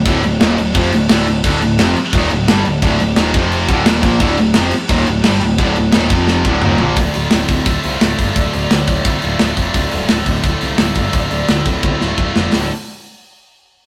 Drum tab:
CC |xxxxxxxx|xxxxxxxx|xxxxxxxx|xxxxxxxx|
HH |--------|--------|--------|--------|
SD |--o---o-|--o---o-|--o---o-|--o---o-|
T1 |--------|--------|--------|--------|
T2 |--------|--------|--------|--------|
FT |--------|--------|--------|--------|
BD |o---o---|o---o---|o--o-o-o|o---o---|

CC |xxxx----|--------|--------|--------|
HH |--------|oooooooo|oooooooo|oooooooo|
SD |--o-o---|--o---o-|--o---o-|--o---o-|
T1 |--------|--------|--------|--------|
T2 |------o-|--------|--------|--------|
FT |-------o|--------|--------|--------|
BD |o--o-o--|o--oo--o|o--oo--o|o--oo--o|

CC |--------|--------|
HH |oooo----|o-------|
SD |--o--o-o|o-------|
T1 |----o---|--------|
T2 |--------|--------|
FT |--------|--------|
BD |o--oo-o-|--------|